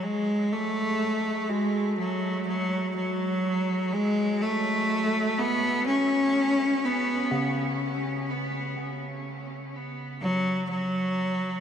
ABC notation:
X:1
M:4/4
L:1/16
Q:1/4=62
K:none
V:1 name="Bronze metallophone"
z2 ^G4 ^F8- F2- | ^F12- F2 ^C,2- | ^C,16 |]
V:2 name="Cello" clef=bass
^G,2 A,4 G,2 ^F,2 F,2 F,4 | ^G,2 A,4 B,2 ^C4 B,3 z | z8 z2 ^F,2 F,4 |]